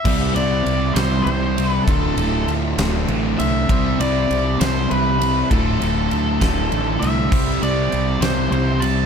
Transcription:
0.00 0.35 E5 medium
0.05 0.32 C2 loud
0.05 0.35 C3 medium
0.05 0.35 G3 loud
0.05 0.36 C4 loud
0.05 0.95 E4 loud
0.05 0.95 G4 medium
0.05 0.96 C5 loud
0.05 kick loud
0.05 crash loud
0.35 0.62 C2 medium
0.35 0.96 C3 medium
0.35 0.97 G3 loud
0.35 0.98 C4 loud
0.35 0.98 D5 loud
0.35 ride medium
0.66 0.92 C2 medium
0.66 ride medium
0.94 1.22 C2 medium
0.94 1.27 C3 loud
0.94 1.27 G3 loud
0.94 1.86 E4 medium
0.94 1.86 G4 medium
0.94 1.22 C5 medium
0.94 1.89 C5 medium
0.94 snare loud
0.94 ride loud
0.99 1.29 C4 loud
1.24 1.78 C2 medium
1.24 1.70 C5 medium
1.24 ride medium
1.28 1.58 C3 medium
1.28 1.58 G3 medium
1.28 1.59 C4 medium
1.58 1.87 C3 medium
1.58 1.87 G3 loud
1.58 1.91 C4 medium
1.58 ride medium
1.70 1.83 B4 medium
1.84 2.13 D1 loud
1.84 2.50 A4 medium
1.84 kick loud
1.88 2.18 D2 medium
1.88 2.19 A2 medium
1.88 2.20 D3 loud
1.88 2.77 A3 loud
1.88 2.78 C4 loud
1.88 2.77 F4 loud
1.88 ride loud
2.17 2.43 D1 medium
2.17 2.79 D2 medium
2.17 2.79 A2 medium
2.17 2.81 D3 medium
2.17 ride medium
2.47 2.73 D2 medium
2.47 ride medium
2.78 3.04 D1 loud
2.78 3.08 D2 loud
2.78 3.09 A2 loud
2.78 3.09 D3 loud
2.78 3.68 A3 medium
2.78 3.71 C4 medium
2.78 3.67 F4 medium
2.78 snare loud
2.78 ride loud
3.08 3.34 A1 medium
3.08 3.38 D2 medium
3.08 3.39 A2 medium
3.08 3.40 D3 medium
3.08 ride medium
3.39 3.65 C2 medium
3.39 3.67 D2 medium
3.39 3.68 A2 medium
3.39 3.68 D3 loud
3.39 4.00 E5 loud
3.39 ride medium
3.69 3.95 C2 loud
3.69 4.00 C3 medium
3.69 4.01 G3 loud
3.69 4.03 C4 loud
3.69 4.59 E4 loud
3.69 4.59 G4 medium
3.69 4.60 C5 loud
3.69 kick loud
3.69 ride loud
4.00 4.26 C2 loud
4.00 4.60 C3 medium
4.00 4.60 G3 medium
4.00 4.62 C4 medium
4.00 4.62 D5 medium
4.00 ride medium
4.31 4.56 C2 medium
4.31 ride medium
4.60 4.86 C2 loud
4.60 4.89 C3 loud
4.60 4.90 G3 loud
4.60 4.92 C4 loud
4.60 5.49 E4 medium
4.60 5.49 G4 medium
4.60 4.90 C5 medium
4.60 5.53 C5 medium
4.60 snare loud
4.60 ride loud
4.91 5.43 C2 medium
4.91 5.21 C3 loud
4.91 5.21 G3 loud
4.91 5.23 C4 loud
4.91 5.50 B4 medium
4.91 ride medium
5.22 5.49 C3 medium
5.22 5.50 G3 medium
5.22 5.53 C4 loud
5.22 ride medium
5.50 5.77 D1 loud
5.50 5.80 D2 medium
5.50 5.80 A2 medium
5.50 5.80 D3 loud
5.50 6.40 A3 medium
5.50 6.41 C4 loud
5.50 6.40 F4 loud
5.50 7.05 A4 medium
5.50 kick loud
5.50 ride loud
5.81 6.07 D1 medium
5.81 6.40 D2 medium
5.81 6.40 A2 medium
5.81 6.41 D3 loud
5.81 ride medium
6.11 6.37 D2 medium
6.11 ride medium
6.41 6.68 D1 medium
6.41 6.70 D2 medium
6.41 6.70 A2 loud
6.41 6.70 D3 medium
6.41 7.30 A3 medium
6.41 7.31 C4 medium
6.41 7.29 F4 medium
6.41 kick medium
6.41 snare loud
6.41 ride loud
6.71 6.97 A1 medium
6.71 6.99 D2 medium
6.71 7.00 A2 medium
6.71 7.00 D3 medium
6.71 ride medium
7.00 7.28 C2 medium
7.00 7.29 D2 medium
7.00 7.30 A2 medium
7.00 7.29 D3 medium
7.00 7.62 E5 loud
7.00 ride medium
7.31 7.58 C2 loud
7.31 7.61 C3 medium
7.31 7.61 G3 medium
7.31 7.63 C4 loud
7.31 8.20 E4 loud
7.31 8.20 G4 loud
7.31 8.20 C5 loud
7.31 kick loud
7.31 crash loud
7.62 7.88 C2 loud
7.62 8.21 C3 medium
7.62 8.21 G3 medium
7.62 8.22 C4 loud
7.62 8.18 D5 loud
7.62 ride medium
7.92 8.18 C2 medium
7.92 ride medium
8.20 8.47 C2 medium
8.20 8.51 C3 loud
8.20 8.51 G3 loud
8.20 8.52 C4 loud
8.20 9.06 E4 medium
8.20 9.06 G4 medium
8.20 9.06 C5 medium
8.20 8.51 C5 medium
8.20 snare loud
8.20 ride loud
8.52 9.04 C2 medium
8.52 8.80 C3 medium
8.52 8.81 G3 medium
8.52 8.82 C4 loud
8.52 8.83 C5 medium
8.52 ride medium
8.80 9.06 C3 medium
8.80 9.06 G3 medium
8.80 9.06 C4 medium
8.80 9.06 A5 loud
8.80 ride medium

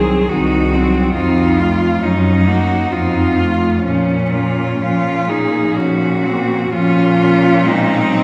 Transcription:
0.00 0.20 C2 soft
0.00 0.30 F#3 soft
0.00 0.30 C4 soft
0.00 0.31 G#4 medium
0.29 1.06 C2 soft
0.29 0.75 D#3 soft
0.29 0.75 D#4 soft
0.29 1.14 F#4 medium
0.73 1.15 F#3 soft
0.73 1.16 C4 soft
1.15 1.93 F2 soft
1.15 1.61 C4 soft
1.15 1.60 D#4 soft
1.15 2.04 F4 medium
1.59 2.03 A3 soft
1.59 2.01 F4 soft
2.02 2.82 F#2 soft
2.02 2.49 F#3 soft
2.02 2.49 C#4 soft
2.02 2.93 D#4 medium
2.47 2.92 A#3 soft
2.47 2.92 F#4 soft
2.92 3.74 F2 soft
2.92 3.40 C4 soft
2.92 3.39 D#4 soft
2.92 3.84 F4 medium
3.38 3.85 A3 soft
3.38 3.85 F4 soft
3.85 4.70 A#2 soft
3.85 4.35 F3 soft
3.85 5.25 C#4 soft
3.85 4.36 C#4 soft
4.33 4.83 A#3 soft
4.33 4.81 F4 soft
4.80 5.64 A#2 soft
4.80 5.30 F3 soft
4.80 5.31 F4 soft
5.29 5.76 A#3 soft
5.29 5.78 D#4 soft
5.29 5.79 G#4 soft
5.76 6.61 A#2 soft
5.76 6.26 F3 soft
5.76 6.27 C#4 soft
5.76 6.72 F#4 soft
6.25 6.72 A#3 soft
6.25 6.72 C4 soft
6.72 8.23 A#2 medium
6.72 7.65 F3 soft
6.72 7.15 C#4 medium
6.72 7.67 F4 medium
7.19 7.66 C#4 soft
7.64 8.11 G#3 medium
7.64 8.23 C4 medium
7.64 8.23 D#4 medium
8.09 8.23 F#3 soft

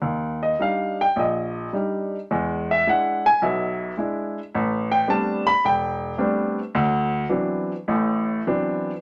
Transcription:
0.02 0.52 D#2 medium
0.43 0.60 D#5 medium
0.59 1.01 G3 medium
0.59 1.01 D4 soft
0.59 1.02 D#4 medium
0.59 0.99 F5 medium
1.01 1.18 G5 medium
1.16 1.67 A#1 medium
1.16 1.72 D#5 medium
1.73 2.15 G3 medium
1.73 2.15 D4 soft
1.73 2.15 D#4 medium
2.31 2.80 E2 medium
2.31 2.80 G#3 medium
2.71 2.88 E5 medium
2.87 3.27 G#3 medium
2.87 3.27 D4 soft
2.87 3.27 E4 medium
2.87 3.26 F#5 medium
3.26 3.42 G#5 loud
3.42 3.90 B1 medium
3.42 3.90 B2 medium
3.42 3.94 E5 medium
3.97 4.37 G#3 medium
3.97 4.38 D4 soft
3.97 4.38 E4 medium
4.55 5.02 A1 medium
4.92 5.08 G5 medium
5.08 5.48 G3 medium
5.08 5.48 A3 medium
5.08 5.48 B3 medium
5.08 5.48 C4 medium
5.08 5.48 D4 medium
5.08 5.46 A5 medium
5.47 5.63 B5 loud
5.64 6.12 E1 medium
5.64 6.16 G5 medium
6.18 6.58 G3 medium
6.18 6.58 A3 medium
6.18 6.58 B3 medium
6.18 6.58 C4 medium
6.18 6.58 D4 medium
6.75 7.23 D2 medium
7.29 7.71 E3 medium
7.29 7.71 F#3 medium
7.29 7.71 B3 medium
7.29 7.71 C4 medium
7.29 7.71 D4 medium
7.88 8.39 A1 medium
7.88 8.39 A2 medium
8.47 8.90 E3 medium
8.47 8.90 F#3 medium
8.47 8.90 B3 medium
8.47 8.90 C4 medium
8.47 8.90 D4 medium

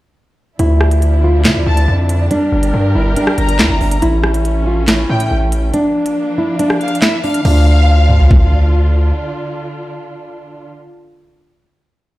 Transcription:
0.59 1.47 D2 loud
0.59 2.29 D3 medium
0.59 2.29 F3 medium
0.59 3.99 D4 medium
0.59 1.20 E4 loud
0.59 2.29 E4 medium
0.59 closed hi-hat medium
0.81 cross-stick loud
0.91 closed hi-hat medium
1.02 closed hi-hat medium
1.24 1.40 F4 medium
1.45 1.57 D3 loud
1.45 2.27 E4 loud
1.45 snare loud
1.45 clap medium
1.45 closed hi-hat medium
1.56 1.66 D2 loud
1.66 1.87 D2 loud
1.66 1.87 A5 medium
1.77 closed hi-hat medium
1.88 2.29 F2 loud
2.09 closed hi-hat medium
2.31 4.00 G3 medium
2.31 2.91 D4 loud
2.31 4.00 G4 medium
2.31 4.00 A#4 medium
2.31 closed hi-hat medium
2.52 2.73 G1 loud
2.63 closed hi-hat medium
2.74 2.94 G2 loud
2.95 3.16 G1 loud
2.95 3.12 E4 medium
3.16 3.57 D4 loud
3.16 closed hi-hat medium
3.27 cross-stick loud
3.38 3.61 G1 loud
3.38 3.98 A#5 medium
3.38 closed hi-hat medium
3.49 closed hi-hat medium
3.59 3.70 D2 medium
3.59 3.76 E4 medium
3.59 snare loud
3.59 clap medium
3.70 3.80 G1 loud
3.81 4.01 G1 loud
3.81 3.97 D4 medium
3.81 open hi-hat medium
3.91 closed hi-hat medium
4.02 5.05 A1 loud
4.02 5.72 E3 medium
4.02 5.72 A3 medium
4.02 5.72 C#4 medium
4.02 4.63 E4 loud
4.02 closed hi-hat medium
4.24 cross-stick loud
4.34 closed hi-hat medium
4.45 closed hi-hat medium
4.67 4.83 F4 medium
4.88 5.70 E4 loud
4.88 snare loud
4.88 clap medium
4.88 closed hi-hat medium
5.09 5.30 A2 loud
5.09 5.30 G5 medium
5.20 closed hi-hat medium
5.31 5.72 A1 loud
5.52 closed hi-hat medium
5.74 7.43 F3 medium
5.74 7.43 A#3 medium
5.74 7.43 D4 medium
5.74 6.34 D4 loud
5.74 closed hi-hat medium
6.06 closed hi-hat medium
6.38 6.54 E4 medium
6.59 7.00 D4 loud
6.59 closed hi-hat medium
6.70 cross-stick loud
6.81 7.01 F5 medium
6.81 closed hi-hat soft
6.88 closed hi-hat medium
6.95 closed hi-hat medium
7.02 7.18 E4 medium
7.02 7.23 E5 medium
7.02 snare loud
7.02 clap medium
7.24 7.40 D4 medium
7.24 7.44 F5 medium
7.24 open hi-hat medium
7.34 closed hi-hat medium
7.45 9.12 D2 loud
7.45 10.70 D3 medium
7.45 10.70 D4 medium
7.45 8.70 D4 medium
7.45 10.70 F4 medium
7.45 8.70 F5 loud
7.45 crash medium
8.09 mid tom medium
8.20 floor tom medium
8.31 kick loud

